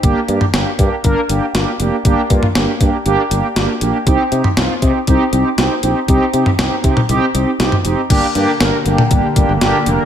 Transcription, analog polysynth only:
\new Staff \with { instrumentName = "Analog polysynth" } { \time 4/4 \key g \phrygian \tempo 4 = 119 <bes d' g'>8 <bes d' g'>8 <bes d' g'>8 <bes d' g'>8 <bes d' bes'>8 <bes d' g'>8 <bes d' g'>8 <bes d' g'>8 | <bes d' g'>8 <bes d' f'>8 <bes d' g'>8 <bes d' g'>8 <bes d' g'>8 <bes d' g'>8 <bes d' g'>8 <bes d' g'>8 | <c' ees' g'>8 <c' ees' g'>8 <c' ees' f'>8 <c' ees' g'>8 <c' ees' g'>8 <c' ees' g'>8 <c' ees' g'>8 <c' ees' g'>8 | <c' ees' g'>8 <c' ees' g'>8 <c' ees' g'>8 <c' ees' g'>8 <c' ees' g'>8 <c' ees' g'>8 <c' ees' g'>8 <c' ees' g'>8 |
<bes d' g'>8 <bes d' g'>8 <bes d' bes'>8 <bes d' g'>8 <bes d' g'>8 <bes d' g'>8 <bes d' g'>8 <bes d' bes'>8 | }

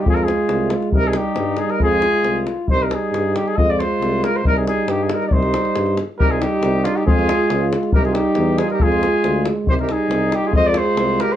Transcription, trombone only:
\new Staff \with { instrumentName = "Trombone" } { \time 2/4 \key c \minor \tempo 4 = 138 f'2 | ees'2 | f'4. r8 | ees'2 |
f'2 | ees'2 | ees'4. r8 | ees'2 |
f'2 | ees'2 | f'4. r8 | ees'2 |
f'2 | }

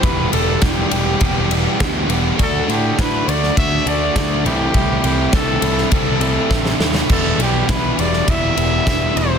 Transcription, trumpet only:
\new Staff \with { instrumentName = "Trumpet" } { \time 4/4 \key e \minor \tempo 4 = 102 b'8 a'8 g'2~ g'8 r8 | a'8 g'8 b'8 d''8 e''8 d''4 g'8~ | g'4 a'4 a'4. r8 | a'8 g'8 b'8 d''8 e''4. c''8 | }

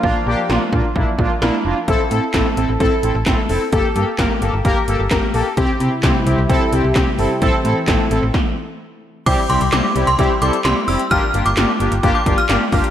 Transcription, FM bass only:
\new Staff \with { instrumentName = "FM bass" } { \clef bass \time 4/4 \key a \phrygian \tempo 4 = 130 bes,,16 r16 bes,,16 r16 bes,,16 r16 bes,16 r16 bes,,16 r16 bes,,16 r16 bes,,16 r16 f,,16 r16 | a,,16 r16 a,16 r16 a,,16 r16 a,,16 a,,16 a,,16 r16 a,,16 a,,16 a,,16 r16 f,,16 r16 | g,,16 r16 g,16 r16 g,,16 r16 g,,16 g,,16 g,,16 r16 g,,16 g,,16 g,,16 r16 bes,,16 r16 | c,16 r16 c16 r16 c,16 r16 c,16 c,16 c,16 r16 c,16 c,16 c,16 r16 g,,16 r16 |
a,,16 r16 a,16 r16 a,,16 r16 a,,16 a,,16 r2 | c,16 r16 c,16 c,16 c,16 r16 c,16 c,16 c,16 r16 c,16 r16 c,16 r16 f,,16 r16 | g,,16 r16 g,,16 g,,16 g,,16 r16 g,,16 g,,16 g,,16 r16 g,,16 r16 g,,16 r16 g,,16 r16 | }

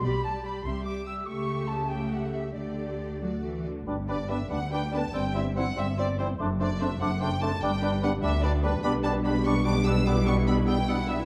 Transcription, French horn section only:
\new Staff \with { instrumentName = "French horn section" } { \time 6/8 \key g \major \tempo 4. = 97 << { r2. | r2. | r2. | r4 b16 r4 r16 b16 r16 |
r4 c'16 r4 r16 c'16 r16 | r4 c'16 r4 r16 c'16 r16 | r4 b16 r4 r16 b16 r16 | \key g \lydian d'2. |
e'2. | } \\ { r2. | r2. | r2. | r4 d16 r4 r16 d16 r16 |
r4 e16 r4 r16 e16 r16 | r4 a16 r4 r16 a16 r16 | r4 g16 r4 r16 g16 r16 | g2.~ |
g2. | } >> }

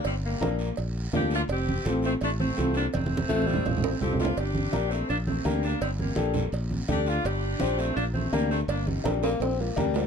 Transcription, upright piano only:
\new Staff \with { instrumentName = "Upright piano" } { \time 4/4 \key g \minor \tempo 4 = 167 r4 <bes d' bes'>8 r4. <bes d' f'>8 r8 | r4 <c' f' a'>8 r4. <c' f' a'>8 r8 | r4 <c' f' a'>8 r4. <c' f' a'>8 r8 | r4 <d' g' bes'>8 r4. <d' g' bes'>8 r8 |
r4 <d' g' a'>8 r4. <d' g' a'>8 r8 | r4 <d' g' c''>8 r4. <d' g' bes'>8 r8 | r4 <d' g' bes'>8 r4. <d' g' bes'>8 r8 | }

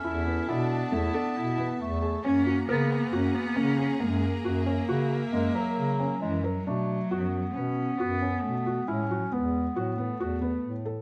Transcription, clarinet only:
\new Staff \with { instrumentName = "Clarinet" } { \time 5/4 \key fis \minor \tempo 4 = 136 cis'4 b2. a4 | ais1~ ais4~ | ais4. r8 gis8 fis4. gis8 fis8 | a4 b1 |
cis'4 b2.~ b8 r8 | }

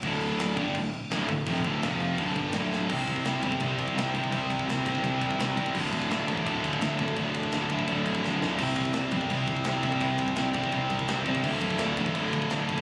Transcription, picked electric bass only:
\new Staff \with { instrumentName = "Picked electric bass" } { \clef bass \time 4/4 \key c \mixolydian \tempo 4 = 168 d,,4. g,,8 d,,8 r8 d,,8 d,,8 | f,,8 d,,8 f,,4 d,,8 g,,8 d,,4 | c,8 c,8 c,8 g,,8 c,8 c,8 c,8 c,8 | c,4 c,8 c,8 c,8 c,8 c,8 c,8 |
d,,8 d,,8 d,,8 a,,8 d,,8 d,,8 d,,8 d,,8 | d,,4 d,,8 d,,8 d,,8 d,,8 d,,8 d,,8 | c,8 c,8 c,8 g,,8 c,8 c,8 c,8 c,8 | c,4 c,8 c,8 c,8 c,8 c,8 c,8 |
d,,8 d,,8 d,,8 a,,8 d,,8 d,,8 d,,8 f,,8 | }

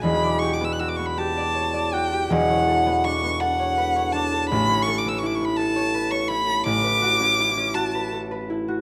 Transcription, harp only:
\new Staff \with { instrumentName = "Harp" } { \time 6/8 \key b \minor \tempo 4. = 54 <e,, e, fis' e''>16 d''16 g'16 b16 fis'16 b16 g'16 d''16 cis''16 d''16 fis'16 g'16 | <e,, e,>16 cis''16 a'16 b16 d'16 b16 a'16 cis''16 b'16 cis''16 d'16 a'16 | a,,16 cis''16 a'16 b16 e'16 b16 a'16 cis''16 b'16 cis''16 e'16 a'16 | a,,16 b'16 fis'16 cis'16 e'16 cis'16 fis'16 b'16 a'16 b'16 e'16 fis'16 | }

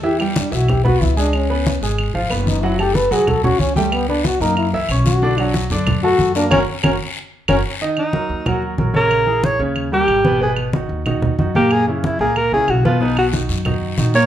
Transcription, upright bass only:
\new Staff \with { instrumentName = "Upright bass" } { \clef bass \time 4/4 \key fis \phrygian \tempo 4 = 185 e,4. b,,4. cis,4~ | cis,4. gis,,4 gis,,8 fis,,4~ | fis,,4. cis,4. cis,4~ | cis,4. fis,4 cis,8 b,,4~ |
b,,4. fis,4. fis,4 | fis,,8 r8 fis,,8 r4. fis,,8 r8 | \key ees \minor r4. ees,4. bes,,4~ | bes,,4. ees,4. aes,,4~ |
aes,,4. ees,4. ges,4~ | ges,4. des,4 des,8 ces,4~ | ces,4. fis,4. ais,,4 | }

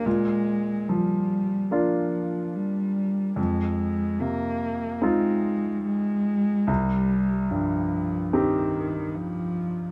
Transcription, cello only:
\new Staff \with { instrumentName = "Cello" } { \clef bass \time 4/4 \key bes \mixolydian \tempo 4 = 73 aes4 g4 f4 g4 | aes4 bes4 aes4 aes4 | g4 f4 ees4 f4 | }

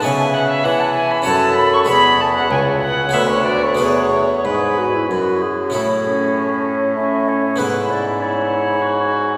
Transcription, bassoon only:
\new Staff \with { instrumentName = "Bassoon" } { \clef bass \time 3/4 \key a \major \tempo 4 = 97 cis4 e4 fis,4 | e,4 cis,4 d,4 | e,4 gis,8 r8 fis,4 | a,2. |
gis,2. | }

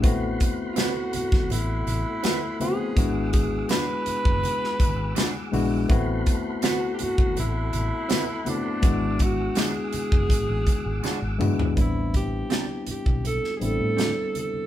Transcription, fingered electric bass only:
\new Staff \with { instrumentName = "Fingered electric bass" } { \clef bass \time 4/4 \key a \dorian \tempo 4 = 82 a,,8 r4 r16 g,,16 a,,8 a,,16 r4 r16 | gis,,4 r8. fis,,16 r8 gis,,8 r8 bes,,8 | a,,8 r4 r16 g,,16 a,,8 a,,16 r4 r16 | gis,,4 r8. fis,,16 gis,,16 a,,16 r16 gis,,16 r16 gis,,16 gis,8 |
a,,4 r8. b,,8 r16 a,,16 a,8 r8. | }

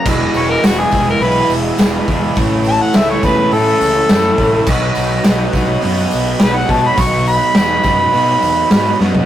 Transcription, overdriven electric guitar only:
\new Staff \with { instrumentName = "Overdriven electric guitar" } { \time 4/4 \key e \lydian \tempo 4 = 104 <e, b, e gis b e'>4 <e, b, e gis b e'>8 <e, b, e gis b e'>8 <e, b, e gis b e'>4 <e, b, e gis b e'>8 <e, b, e gis b e'>8 | <a, e a cis' e'>4 <a, e a cis' e'>8 <a, e a cis' e'>8 <a, e a cis' e'>4 <a, e a cis' e'>8 <a, e a cis' e'>8 | <b, fis b dis' fis'>4 <b, fis b dis' fis'>8 <b, fis b dis' fis'>8 <b, fis b dis' fis'>4 <b, fis b dis' fis'>8 <b, fis b dis' fis'>8 | <b, fis b dis' fis'>4 <b, fis b dis' fis'>8 <b, fis b dis' fis'>8 <b, fis b dis' fis'>4 <b, fis b dis' fis'>8 <b, fis b dis' fis'>8 | }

